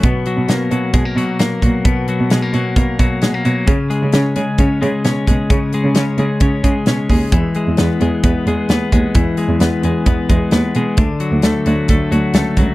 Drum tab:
HH |xxxxxxxx|xxxxxxxx|xxxxxxxx|xxxxxxxo|
SD |--o---o-|--o---o-|--o---o-|--o---o-|
BD |o---o--o|o---oo--|o---o--o|o---oo-o|

HH |xxxxxxxx|xxxxxxxx|xxxxxxxx|
SD |--o---o-|--o---o-|--o---o-|
BD |o---o--o|o---oo--|o---o--o|